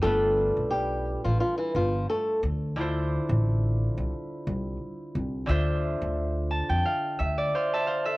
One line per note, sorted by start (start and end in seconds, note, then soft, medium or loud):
0.02 0.49 G1 loud
0.02 2.47 G3 medium
0.02 0.68 A3 medium
0.02 2.77 D4 medium
0.02 2.56 F4 medium
0.02 0.67 A4 loud
0.02 2.39 A4 medium
0.06 2.40 B4 medium
0.57 1.15 B1 medium
0.70 1.21 G3 medium
0.70 1.20 G4 medium
1.24 1.38 A1 medium
1.24 1.39 F3 medium
1.24 1.38 F4 medium
1.40 1.57 F3 medium
1.40 1.57 F4 medium
1.58 1.72 E3 medium
1.58 1.72 E4 medium
1.74 2.03 G1 medium
1.74 2.06 F3 medium
1.74 2.06 F4 medium
2.09 2.40 A3 medium
2.09 2.40 A4 medium
2.43 3.16 D2 loud
2.76 5.45 D3 medium
2.76 5.47 D4 medium
2.76 5.46 E4 medium
2.76 5.47 F4 medium
2.81 5.47 C5 medium
3.29 3.87 A1 loud
3.97 4.11 C2 medium
4.47 4.76 C2 medium
5.15 5.44 C2 medium
5.46 5.94 D2 loud
5.46 8.17 D3 medium
5.46 8.17 D4 medium
5.46 8.17 F4 medium
5.46 7.19 E5 medium
5.50 7.50 C5 medium
6.02 6.60 D2 medium
6.51 7.73 A5 medium
6.70 6.83 F2 medium
6.70 8.17 G5 medium
6.86 7.25 F5 medium
7.19 7.49 D2 medium
7.19 7.62 E5 medium
7.38 8.17 D5 medium
7.55 7.87 C5 medium
7.55 7.80 F5 medium
7.55 8.17 C6 medium
7.74 7.93 E5 medium
7.74 8.17 A5 medium
7.87 8.17 C5 medium
7.87 8.11 F5 medium
8.05 8.17 A4 medium
8.05 8.17 E5 medium